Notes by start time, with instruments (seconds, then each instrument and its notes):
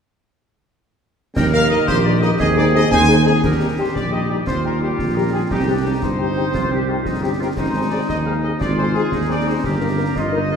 1.35 tuba D#2, trombone section D#3 A#3, woodwind section A#4, trumpet section G5, concert bass drum, snare, crash
1.53 french horn section A#3 D#4 A#4, trumpet section F5
1.69 french horn section A#3 D#4 A#4, trumpet section D#5
1.87 tuba A#1, woodwind section G4, trumpet section C5, concert bass drum, snare
2.03 french horn section A#3 D#4 A#4, trumpet section D5
2.21 french horn section A#3 D#4 A#4, trumpet section D#5, snare
2.39 tuba D#2, trombone section C4, woodwind section G#4, trumpet section D#5, concert bass drum, snare
2.56 french horn section C4 D#4 G#4, trumpet section D5
2.74 french horn section C4 D#4 G#4, trumpet section D#5
2.90 tuba D#2, woodwind section C5, trumpet section G#5, concert bass drum, snare
3.08 french horn section C4 D#4 G#4, snare
3.25 french horn section C4 D#4 G#4, trumpet section G#4, snare
3.43 tuba D#2, woodwind section G4, trumpet section A#4, concert bass drum, snare, crash
3.60 french horn section G3 D#4 G4
3.78 french horn section G3 D#4 G4, trumpet section C5
3.94 tuba A#1, trumpet section D5, concert bass drum, snare
4.12 french horn section G3 D#4 G4, trumpet section D#5
4.28 french horn section G3 D#4 G4, trumpet section D5
4.46 tuba D#2, woodwind section F4, trumpet section C5, concert bass drum, snare
4.64 french horn section G3 D#4 G4, trumpet section A#4
4.81 french horn section G3 D#4 G4, trumpet section G4
4.99 tuba A#1, concert bass drum, snare
5.14 french horn section G3 D#4 G4, trumpet section A#4
5.32 french horn section G3 D#4 G4, trumpet section G#4
5.50 tuba C2, woodwind section D#4, trumpet section G4, concert bass drum, snare
5.67 french horn section C4 D#4 G4, woodwind section D4
5.85 french horn section C4 D#4 G4, woodwind section D#4
6.02 tuba G1, trumpet section C5, concert bass drum, snare
6.19 french horn section C4 D#4 G4
6.37 french horn section C4 D#4 G4
6.54 tuba C2, woodwind section F4, concert bass drum, snare
6.71 french horn section C4 D#4 G4, woodwind section G4
6.89 french horn section C4 D#4 G4, woodwind section F4
7.05 tuba G1, woodwind section D#4, concert bass drum, snare
7.22 french horn section C4 D#4 G4, woodwind section G4
7.39 french horn section C4 D#4 G4, woodwind section F4, trumpet section A#4
7.57 tuba G#1, woodwind section D#4, trumpet section C5, concert bass drum, snare, crash
7.75 french horn section C4 D#4 G#4
7.90 french horn section C4 D#4 G#4, trumpet section D5
8.08 tuba D#2, trumpet section D#5, concert bass drum, snare
8.25 french horn section C4 D#4 G#4, trumpet section F5
8.42 french horn section C4 D#4 G#4, trumpet section D#5
8.60 tuba G#1, woodwind section F4, trumpet section D5, concert bass drum, snare
8.77 french horn section C4 D#4 G#4, trumpet section C5
8.94 french horn section C4 D#4 G#4, trumpet section G#4
9.12 tuba D#2, woodwind section D#4, concert bass drum, snare
9.29 french horn section C4 D#4 G#4, trumpet section D5
9.47 french horn section C4 D#4 G#4, trumpet section C5
9.64 tuba G1, woodwind section G4, trumpet section A#4, concert bass drum, snare
9.81 french horn section A#3 D#4 A#4
9.98 french horn section A#3 D#4 A#4
10.16 tuba G1, woodwind section F4, trumpet section D#5, concert bass drum, snare
10.32 french horn section A#3 D#4 A#4, woodwind section D#4
10.50 french horn section A#3 D#4 A#4, woodwind section F4